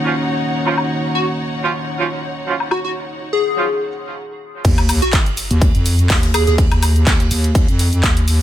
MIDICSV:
0, 0, Header, 1, 8, 480
1, 0, Start_track
1, 0, Key_signature, -6, "minor"
1, 0, Tempo, 483871
1, 770, Time_signature, 4, 2, 24, 8
1, 8356, End_track
2, 0, Start_track
2, 0, Title_t, "String section"
2, 0, Program_c, 0, 48
2, 0, Note_on_c, 0, 63, 70
2, 0, Note_on_c, 0, 73, 61
2, 0, Note_on_c, 0, 78, 64
2, 4130, Note_off_c, 0, 63, 0
2, 4130, Note_off_c, 0, 78, 0
2, 4131, Note_off_c, 0, 73, 0
2, 8356, End_track
3, 0, Start_track
3, 0, Title_t, "Digital synth lead"
3, 0, Program_c, 1, 84
3, 1140, Note_on_c, 1, 66, 85
3, 1245, Note_off_c, 1, 66, 0
3, 2691, Note_on_c, 1, 66, 89
3, 2775, Note_off_c, 1, 66, 0
3, 2822, Note_on_c, 1, 66, 73
3, 2891, Note_off_c, 1, 66, 0
3, 3302, Note_on_c, 1, 68, 89
3, 3782, Note_off_c, 1, 68, 0
3, 4980, Note_on_c, 1, 66, 88
3, 5085, Note_off_c, 1, 66, 0
3, 6292, Note_on_c, 1, 68, 85
3, 6375, Note_off_c, 1, 68, 0
3, 6422, Note_on_c, 1, 68, 75
3, 6491, Note_off_c, 1, 68, 0
3, 8356, End_track
4, 0, Start_track
4, 0, Title_t, "Analog synth pad"
4, 0, Program_c, 2, 89
4, 0, Note_on_c, 2, 51, 74
4, 0, Note_on_c, 2, 58, 70
4, 0, Note_on_c, 2, 61, 72
4, 0, Note_on_c, 2, 66, 88
4, 4090, Note_off_c, 2, 61, 0
4, 4091, Note_off_c, 2, 51, 0
4, 4091, Note_off_c, 2, 58, 0
4, 4091, Note_off_c, 2, 66, 0
4, 8356, End_track
5, 0, Start_track
5, 0, Title_t, "Horn section"
5, 0, Program_c, 3, 61
5, 49, Note_on_c, 3, 53, 79
5, 49, Note_on_c, 3, 54, 75
5, 49, Note_on_c, 3, 61, 66
5, 49, Note_on_c, 3, 65, 86
5, 125, Note_off_c, 3, 53, 0
5, 125, Note_off_c, 3, 54, 0
5, 125, Note_off_c, 3, 61, 0
5, 125, Note_off_c, 3, 65, 0
5, 660, Note_on_c, 3, 53, 86
5, 660, Note_on_c, 3, 54, 82
5, 660, Note_on_c, 3, 65, 93
5, 661, Note_on_c, 3, 61, 77
5, 723, Note_off_c, 3, 53, 0
5, 723, Note_off_c, 3, 54, 0
5, 723, Note_off_c, 3, 61, 0
5, 723, Note_off_c, 3, 65, 0
5, 1620, Note_on_c, 3, 61, 79
5, 1621, Note_on_c, 3, 53, 93
5, 1621, Note_on_c, 3, 54, 88
5, 1621, Note_on_c, 3, 65, 101
5, 1683, Note_off_c, 3, 53, 0
5, 1683, Note_off_c, 3, 54, 0
5, 1683, Note_off_c, 3, 61, 0
5, 1683, Note_off_c, 3, 65, 0
5, 1969, Note_on_c, 3, 54, 85
5, 1969, Note_on_c, 3, 61, 79
5, 1970, Note_on_c, 3, 53, 85
5, 1970, Note_on_c, 3, 65, 93
5, 2045, Note_off_c, 3, 53, 0
5, 2045, Note_off_c, 3, 54, 0
5, 2045, Note_off_c, 3, 61, 0
5, 2045, Note_off_c, 3, 65, 0
5, 2449, Note_on_c, 3, 53, 73
5, 2449, Note_on_c, 3, 54, 72
5, 2449, Note_on_c, 3, 61, 64
5, 2449, Note_on_c, 3, 65, 80
5, 2525, Note_off_c, 3, 53, 0
5, 2525, Note_off_c, 3, 54, 0
5, 2525, Note_off_c, 3, 61, 0
5, 2525, Note_off_c, 3, 65, 0
5, 3540, Note_on_c, 3, 53, 73
5, 3540, Note_on_c, 3, 54, 73
5, 3540, Note_on_c, 3, 61, 68
5, 3540, Note_on_c, 3, 65, 80
5, 3640, Note_off_c, 3, 53, 0
5, 3640, Note_off_c, 3, 54, 0
5, 3640, Note_off_c, 3, 61, 0
5, 3640, Note_off_c, 3, 65, 0
5, 8356, End_track
6, 0, Start_track
6, 0, Title_t, "Wobble bass"
6, 0, Program_c, 4, 39
6, 4610, Note_on_c, 4, 39, 98
6, 4960, Note_off_c, 4, 39, 0
6, 5462, Note_on_c, 4, 39, 94
6, 5681, Note_off_c, 4, 39, 0
6, 5701, Note_on_c, 4, 41, 100
6, 6032, Note_off_c, 4, 41, 0
6, 6050, Note_on_c, 4, 39, 99
6, 6400, Note_off_c, 4, 39, 0
6, 6421, Note_on_c, 4, 39, 96
6, 6640, Note_off_c, 4, 39, 0
6, 6661, Note_on_c, 4, 39, 103
6, 6992, Note_off_c, 4, 39, 0
6, 7010, Note_on_c, 4, 39, 96
6, 7233, Note_off_c, 4, 39, 0
6, 7249, Note_on_c, 4, 39, 97
6, 7600, Note_off_c, 4, 39, 0
6, 7620, Note_on_c, 4, 41, 99
6, 7952, Note_off_c, 4, 41, 0
6, 7970, Note_on_c, 4, 39, 98
6, 8320, Note_off_c, 4, 39, 0
6, 8356, End_track
7, 0, Start_track
7, 0, Title_t, "Sub drop"
7, 0, Program_c, 5, 103
7, 4610, Note_on_c, 5, 60, 72
7, 6530, Note_off_c, 5, 60, 0
7, 8356, End_track
8, 0, Start_track
8, 0, Title_t, "Drums"
8, 661, Note_on_c, 9, 69, 29
8, 661, Note_on_c, 9, 76, 52
8, 760, Note_off_c, 9, 69, 0
8, 760, Note_off_c, 9, 76, 0
8, 769, Note_on_c, 9, 69, 38
8, 769, Note_on_c, 9, 76, 78
8, 868, Note_off_c, 9, 69, 0
8, 868, Note_off_c, 9, 76, 0
8, 900, Note_on_c, 9, 69, 25
8, 1000, Note_off_c, 9, 69, 0
8, 1009, Note_on_c, 9, 69, 66
8, 1108, Note_off_c, 9, 69, 0
8, 1140, Note_on_c, 9, 69, 29
8, 1239, Note_off_c, 9, 69, 0
8, 1380, Note_on_c, 9, 69, 26
8, 1480, Note_off_c, 9, 69, 0
8, 1489, Note_on_c, 9, 69, 65
8, 1588, Note_off_c, 9, 69, 0
8, 2449, Note_on_c, 9, 69, 65
8, 2548, Note_off_c, 9, 69, 0
8, 2581, Note_on_c, 9, 69, 28
8, 2581, Note_on_c, 9, 76, 56
8, 2680, Note_off_c, 9, 69, 0
8, 2680, Note_off_c, 9, 76, 0
8, 2689, Note_on_c, 9, 69, 40
8, 2689, Note_on_c, 9, 76, 80
8, 2788, Note_off_c, 9, 76, 0
8, 2789, Note_off_c, 9, 69, 0
8, 2821, Note_on_c, 9, 69, 26
8, 2920, Note_off_c, 9, 69, 0
8, 2929, Note_on_c, 9, 69, 69
8, 3028, Note_off_c, 9, 69, 0
8, 3060, Note_on_c, 9, 69, 30
8, 3160, Note_off_c, 9, 69, 0
8, 3170, Note_on_c, 9, 69, 39
8, 3269, Note_off_c, 9, 69, 0
8, 3300, Note_on_c, 9, 69, 26
8, 3400, Note_off_c, 9, 69, 0
8, 3409, Note_on_c, 9, 69, 68
8, 3508, Note_off_c, 9, 69, 0
8, 3540, Note_on_c, 9, 69, 31
8, 3639, Note_off_c, 9, 69, 0
8, 3650, Note_on_c, 9, 69, 41
8, 3749, Note_off_c, 9, 69, 0
8, 3782, Note_on_c, 9, 69, 27
8, 3881, Note_off_c, 9, 69, 0
8, 3890, Note_on_c, 9, 69, 70
8, 3989, Note_off_c, 9, 69, 0
8, 4022, Note_on_c, 9, 69, 28
8, 4122, Note_off_c, 9, 69, 0
8, 4610, Note_on_c, 9, 36, 118
8, 4612, Note_on_c, 9, 42, 81
8, 4612, Note_on_c, 9, 49, 100
8, 4612, Note_on_c, 9, 51, 85
8, 4612, Note_on_c, 9, 69, 46
8, 4709, Note_off_c, 9, 36, 0
8, 4711, Note_off_c, 9, 42, 0
8, 4711, Note_off_c, 9, 49, 0
8, 4711, Note_off_c, 9, 51, 0
8, 4711, Note_off_c, 9, 69, 0
8, 4738, Note_on_c, 9, 51, 42
8, 4742, Note_on_c, 9, 42, 36
8, 4742, Note_on_c, 9, 69, 30
8, 4742, Note_on_c, 9, 76, 75
8, 4837, Note_off_c, 9, 51, 0
8, 4841, Note_off_c, 9, 42, 0
8, 4841, Note_off_c, 9, 69, 0
8, 4841, Note_off_c, 9, 76, 0
8, 4851, Note_on_c, 9, 46, 101
8, 4851, Note_on_c, 9, 51, 70
8, 4851, Note_on_c, 9, 69, 81
8, 4851, Note_on_c, 9, 76, 57
8, 4950, Note_off_c, 9, 46, 0
8, 4950, Note_off_c, 9, 51, 0
8, 4950, Note_off_c, 9, 69, 0
8, 4950, Note_off_c, 9, 76, 0
8, 4982, Note_on_c, 9, 42, 38
8, 4982, Note_on_c, 9, 69, 35
8, 4988, Note_on_c, 9, 51, 43
8, 5082, Note_off_c, 9, 42, 0
8, 5082, Note_off_c, 9, 69, 0
8, 5088, Note_off_c, 9, 51, 0
8, 5089, Note_on_c, 9, 38, 114
8, 5090, Note_on_c, 9, 36, 105
8, 5090, Note_on_c, 9, 42, 85
8, 5090, Note_on_c, 9, 69, 45
8, 5092, Note_on_c, 9, 39, 126
8, 5094, Note_on_c, 9, 51, 93
8, 5188, Note_off_c, 9, 38, 0
8, 5189, Note_off_c, 9, 36, 0
8, 5189, Note_off_c, 9, 42, 0
8, 5189, Note_off_c, 9, 69, 0
8, 5191, Note_off_c, 9, 39, 0
8, 5193, Note_off_c, 9, 51, 0
8, 5221, Note_on_c, 9, 42, 38
8, 5221, Note_on_c, 9, 69, 31
8, 5320, Note_off_c, 9, 42, 0
8, 5320, Note_off_c, 9, 69, 0
8, 5328, Note_on_c, 9, 51, 61
8, 5330, Note_on_c, 9, 46, 92
8, 5330, Note_on_c, 9, 69, 73
8, 5427, Note_off_c, 9, 51, 0
8, 5429, Note_off_c, 9, 46, 0
8, 5429, Note_off_c, 9, 69, 0
8, 5463, Note_on_c, 9, 42, 55
8, 5463, Note_on_c, 9, 69, 33
8, 5562, Note_off_c, 9, 42, 0
8, 5562, Note_off_c, 9, 69, 0
8, 5570, Note_on_c, 9, 36, 123
8, 5570, Note_on_c, 9, 51, 91
8, 5571, Note_on_c, 9, 42, 85
8, 5571, Note_on_c, 9, 69, 47
8, 5669, Note_off_c, 9, 36, 0
8, 5670, Note_off_c, 9, 42, 0
8, 5670, Note_off_c, 9, 51, 0
8, 5671, Note_off_c, 9, 69, 0
8, 5702, Note_on_c, 9, 42, 37
8, 5702, Note_on_c, 9, 69, 30
8, 5801, Note_off_c, 9, 42, 0
8, 5801, Note_off_c, 9, 69, 0
8, 5810, Note_on_c, 9, 46, 107
8, 5810, Note_on_c, 9, 51, 69
8, 5810, Note_on_c, 9, 69, 79
8, 5909, Note_off_c, 9, 46, 0
8, 5909, Note_off_c, 9, 51, 0
8, 5909, Note_off_c, 9, 69, 0
8, 5942, Note_on_c, 9, 42, 37
8, 5942, Note_on_c, 9, 69, 34
8, 6041, Note_off_c, 9, 42, 0
8, 6041, Note_off_c, 9, 69, 0
8, 6047, Note_on_c, 9, 46, 74
8, 6049, Note_on_c, 9, 38, 124
8, 6050, Note_on_c, 9, 36, 102
8, 6050, Note_on_c, 9, 42, 79
8, 6050, Note_on_c, 9, 69, 45
8, 6052, Note_on_c, 9, 39, 121
8, 6146, Note_off_c, 9, 46, 0
8, 6148, Note_off_c, 9, 38, 0
8, 6149, Note_off_c, 9, 36, 0
8, 6149, Note_off_c, 9, 42, 0
8, 6150, Note_off_c, 9, 69, 0
8, 6151, Note_off_c, 9, 39, 0
8, 6181, Note_on_c, 9, 38, 41
8, 6181, Note_on_c, 9, 42, 58
8, 6182, Note_on_c, 9, 69, 31
8, 6281, Note_off_c, 9, 38, 0
8, 6281, Note_off_c, 9, 42, 0
8, 6281, Note_off_c, 9, 69, 0
8, 6291, Note_on_c, 9, 46, 94
8, 6291, Note_on_c, 9, 69, 80
8, 6291, Note_on_c, 9, 76, 75
8, 6296, Note_on_c, 9, 51, 68
8, 6390, Note_off_c, 9, 46, 0
8, 6390, Note_off_c, 9, 69, 0
8, 6390, Note_off_c, 9, 76, 0
8, 6395, Note_off_c, 9, 51, 0
8, 6421, Note_on_c, 9, 42, 37
8, 6421, Note_on_c, 9, 69, 34
8, 6422, Note_on_c, 9, 38, 47
8, 6520, Note_off_c, 9, 42, 0
8, 6520, Note_off_c, 9, 69, 0
8, 6521, Note_off_c, 9, 38, 0
8, 6524, Note_on_c, 9, 51, 92
8, 6530, Note_on_c, 9, 36, 121
8, 6531, Note_on_c, 9, 42, 81
8, 6531, Note_on_c, 9, 69, 43
8, 6624, Note_off_c, 9, 51, 0
8, 6629, Note_off_c, 9, 36, 0
8, 6630, Note_off_c, 9, 42, 0
8, 6630, Note_off_c, 9, 69, 0
8, 6662, Note_on_c, 9, 42, 36
8, 6662, Note_on_c, 9, 69, 28
8, 6662, Note_on_c, 9, 76, 72
8, 6761, Note_off_c, 9, 42, 0
8, 6761, Note_off_c, 9, 69, 0
8, 6761, Note_off_c, 9, 76, 0
8, 6770, Note_on_c, 9, 51, 66
8, 6771, Note_on_c, 9, 46, 109
8, 6771, Note_on_c, 9, 69, 79
8, 6771, Note_on_c, 9, 76, 62
8, 6869, Note_off_c, 9, 51, 0
8, 6870, Note_off_c, 9, 46, 0
8, 6870, Note_off_c, 9, 69, 0
8, 6870, Note_off_c, 9, 76, 0
8, 6903, Note_on_c, 9, 42, 39
8, 6903, Note_on_c, 9, 69, 34
8, 7002, Note_off_c, 9, 42, 0
8, 7002, Note_off_c, 9, 69, 0
8, 7006, Note_on_c, 9, 51, 86
8, 7010, Note_on_c, 9, 36, 107
8, 7011, Note_on_c, 9, 42, 78
8, 7011, Note_on_c, 9, 69, 45
8, 7013, Note_on_c, 9, 38, 121
8, 7013, Note_on_c, 9, 39, 126
8, 7106, Note_off_c, 9, 51, 0
8, 7109, Note_off_c, 9, 36, 0
8, 7111, Note_off_c, 9, 42, 0
8, 7111, Note_off_c, 9, 69, 0
8, 7112, Note_off_c, 9, 38, 0
8, 7113, Note_off_c, 9, 39, 0
8, 7143, Note_on_c, 9, 42, 38
8, 7143, Note_on_c, 9, 69, 30
8, 7242, Note_off_c, 9, 42, 0
8, 7242, Note_off_c, 9, 69, 0
8, 7248, Note_on_c, 9, 51, 70
8, 7251, Note_on_c, 9, 46, 94
8, 7251, Note_on_c, 9, 69, 70
8, 7347, Note_off_c, 9, 51, 0
8, 7350, Note_off_c, 9, 46, 0
8, 7351, Note_off_c, 9, 69, 0
8, 7383, Note_on_c, 9, 42, 52
8, 7383, Note_on_c, 9, 69, 33
8, 7482, Note_off_c, 9, 42, 0
8, 7482, Note_off_c, 9, 69, 0
8, 7490, Note_on_c, 9, 36, 127
8, 7490, Note_on_c, 9, 51, 89
8, 7491, Note_on_c, 9, 42, 82
8, 7491, Note_on_c, 9, 69, 44
8, 7589, Note_off_c, 9, 36, 0
8, 7590, Note_off_c, 9, 42, 0
8, 7590, Note_off_c, 9, 51, 0
8, 7591, Note_off_c, 9, 69, 0
8, 7623, Note_on_c, 9, 42, 36
8, 7623, Note_on_c, 9, 69, 31
8, 7722, Note_off_c, 9, 42, 0
8, 7722, Note_off_c, 9, 69, 0
8, 7727, Note_on_c, 9, 51, 60
8, 7731, Note_on_c, 9, 38, 38
8, 7731, Note_on_c, 9, 46, 107
8, 7731, Note_on_c, 9, 69, 72
8, 7827, Note_off_c, 9, 51, 0
8, 7830, Note_off_c, 9, 38, 0
8, 7830, Note_off_c, 9, 46, 0
8, 7830, Note_off_c, 9, 69, 0
8, 7863, Note_on_c, 9, 42, 37
8, 7863, Note_on_c, 9, 69, 32
8, 7864, Note_on_c, 9, 51, 42
8, 7962, Note_off_c, 9, 42, 0
8, 7962, Note_off_c, 9, 69, 0
8, 7963, Note_off_c, 9, 51, 0
8, 7970, Note_on_c, 9, 36, 109
8, 7970, Note_on_c, 9, 38, 118
8, 7971, Note_on_c, 9, 42, 81
8, 7971, Note_on_c, 9, 69, 43
8, 7973, Note_on_c, 9, 39, 123
8, 7977, Note_on_c, 9, 51, 89
8, 8069, Note_off_c, 9, 36, 0
8, 8069, Note_off_c, 9, 38, 0
8, 8070, Note_off_c, 9, 42, 0
8, 8071, Note_off_c, 9, 69, 0
8, 8072, Note_off_c, 9, 39, 0
8, 8076, Note_off_c, 9, 51, 0
8, 8103, Note_on_c, 9, 42, 57
8, 8103, Note_on_c, 9, 69, 31
8, 8202, Note_off_c, 9, 42, 0
8, 8202, Note_off_c, 9, 69, 0
8, 8211, Note_on_c, 9, 46, 96
8, 8211, Note_on_c, 9, 69, 76
8, 8216, Note_on_c, 9, 51, 66
8, 8310, Note_off_c, 9, 46, 0
8, 8310, Note_off_c, 9, 69, 0
8, 8315, Note_off_c, 9, 51, 0
8, 8356, End_track
0, 0, End_of_file